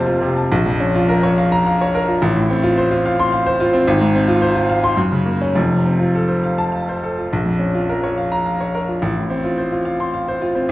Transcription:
Already playing: F1 F2 C3 A#3 C4 F4 C5 F5 A5
0.06 F4
0.21 C3
0.37 A5
0.52 A#1
0.66 F2
0.80 C#4
0.95 F4
1.09 A#4
1.23 C#5
1.38 F5
1.52 A#5
1.67 F5
1.81 C#5
1.95 A#4
2.08 F4
2.22 A1
2.36 A2
2.50 C4
2.63 F4
2.78 C5
2.91 F4
3.05 F5
3.19 C6
3.32 F5
3.46 C5
3.60 F4
3.73 C4
3.87 G#1
4.01 G#2
4.15 C4
4.28 F4
4.42 C5
4.55 F4
4.70 F5
4.84 C6
4.97 F#2
5.12 C#3
5.26 A#3
5.41 C#4
5.55 F1 F2
5.71 C3
5.86 C4
6.00 F4
6.15 A4
6.28 C5
6.44 F5
6.58 A5
6.72 F5
6.89 C5
7.03 A4
7.18 F4
7.33 A#1
7.45 F2
7.59 C#4
7.75 F4
7.89 A#4
8.04 C#5
8.18 F5
8.32 A#5
8.46 F5
8.61 C#5
8.75 A#4
8.88 F4
9.02 A1
9.17 A2
9.30 C4
9.44 F4
9.58 C5
9.72 F4
9.85 F5
10.00 C6
10.14 F5
10.28 C5
10.42 F4
10.55 C4

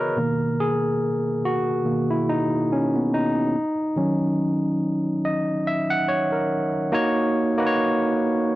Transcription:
Already playing: C#3 E3 B3 F#4 G#4 A#4 B4 C#5 D#5
0.17 B2 D#3 A#3
0.60 G#4
1.45 F#4
1.84 B2 D#3 A#3
2.11 E4
2.29 D#4
2.72 C#4
2.95 B3
3.14 D#4
3.96 D#3 F#3 C#4
5.25 D#5
5.67 E5
5.90 F#5
6.08 C#5
6.32 A#4
6.92 A#3 D#4 F#4 C#5
7.58 A#3 D#4 F#4 B4
7.67 C#5

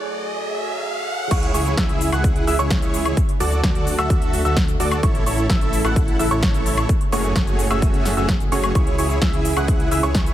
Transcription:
Already playing: F#3 A3 G#4, riser
1.31 C#2 C#3 G#3 E4 G#4 C#5 C#6, kick, closed hi-hat, crash, shaker
1.43 closed hi-hat
1.54 C#2 E4 G#4 C#5 C#6, open hi-hat, shaker
1.66 closed hi-hat, shaker
1.77 C#2 E6, kick, snare, closed hi-hat, shaker
1.89 closed hi-hat
2.01 open hi-hat, shaker
2.12 C#2 E4 G#4 F#5 F#6, closed hi-hat, high woodblock, shaker
2.24 kick, closed hi-hat, shaker
2.36 closed hi-hat
2.47 C#2 E4 G#4 E5 E6, open hi-hat, shaker
2.59 C#2 E4 G#4 C#5 C#6, closed hi-hat, shaker
2.70 kick, snare, closed hi-hat, shaker
2.82 closed hi-hat, shaker
2.94 open hi-hat, shaker
3.06 closed hi-hat, high woodblock, shaker
3.17 D3 A3 F#4, kick, closed hi-hat, shaker
3.29 closed hi-hat
3.40 D2 F#4 A4 D5 D6, open hi-hat, shaker
3.52 closed hi-hat, shaker
3.64 D2 D6, kick, snare, closed hi-hat, shaker
3.75 closed hi-hat
3.87 open hi-hat, shaker
3.98 D2 F#4 A4 E5 E6, closed hi-hat, high woodblock, shaker
4.10 kick, closed hi-hat, shaker
4.22 closed hi-hat
4.33 open hi-hat, shaker
4.45 D2 F#4 A4 E5 E6, closed hi-hat, shaker
4.57 kick, snare, closed hi-hat, shaker
4.68 closed hi-hat, shaker
4.80 D2 F#4 A4 D5 D6, open hi-hat, shaker
4.92 closed hi-hat, high woodblock, shaker
5.03 A1 C#3 E4 C#6, kick, closed hi-hat, shaker
5.15 closed hi-hat
5.26 A1 E4 A4 C#5 C#6, open hi-hat, shaker
5.38 closed hi-hat, shaker
5.50 A1 E4 E6, kick, snare, closed hi-hat, shaker
5.61 closed hi-hat
5.73 open hi-hat, shaker
5.84 A1 E4 A4 F#5 F#6, closed hi-hat, high woodblock, shaker
5.96 kick, closed hi-hat, shaker
6.08 closed hi-hat
6.19 A1 E4 A4 E5 E6, open hi-hat, shaker
6.31 A1 E4 A4 C#5 C#6, closed hi-hat, shaker
6.43 kick, snare, closed hi-hat, shaker
6.54 closed hi-hat, shaker
6.66 open hi-hat, shaker
6.78 closed hi-hat, high woodblock, shaker
6.89 A2 F#4 G#4, kick, closed hi-hat, shaker
7.01 closed hi-hat
7.12 F#1 A3 C#4 F#4 G#4 C#5 C#6, open hi-hat, shaker
7.24 closed hi-hat, shaker
7.36 F#1 A3 C#4 G#4 C#6, kick, snare, closed hi-hat, shaker
7.47 closed hi-hat, shaker
7.59 open hi-hat, shaker
7.71 F#1 A3 C#4 F#4 G#4 E5 E6, closed hi-hat, high woodblock, shaker
7.82 kick, closed hi-hat, shaker
7.94 closed hi-hat
8.05 snare, open hi-hat, shaker
8.17 F#1 A3 C#4 F#4 G#4 E5 E6, closed hi-hat, shaker
8.29 kick, snare, closed hi-hat, shaker
8.40 closed hi-hat, shaker
8.52 F#1 A3 C#4 F#4 G#4 C#5 C#6, open hi-hat, shaker
8.64 closed hi-hat, high woodblock, shaker
8.75 C#2 C#3 E4 G#4 C#5 C#6, kick, closed hi-hat, shaker
8.87 closed hi-hat
8.98 C#2 E4 G#4 C#5 C#6, open hi-hat, shaker
9.10 closed hi-hat, shaker
9.22 C#2 E4 G#4 E6, kick, snare, closed hi-hat, shaker
9.33 closed hi-hat
9.45 open hi-hat, shaker
9.57 C#2 E4 G#4 F#5 F#6, closed hi-hat, high woodblock, shaker
9.68 kick, closed hi-hat, shaker
9.80 closed hi-hat
9.91 C#2 E4 G#4 E5 E6, open hi-hat, shaker
10.03 C#2 E4 G#4 C#5 C#6, closed hi-hat, shaker
10.15 kick, snare, closed hi-hat, shaker
10.26 closed hi-hat, shaker

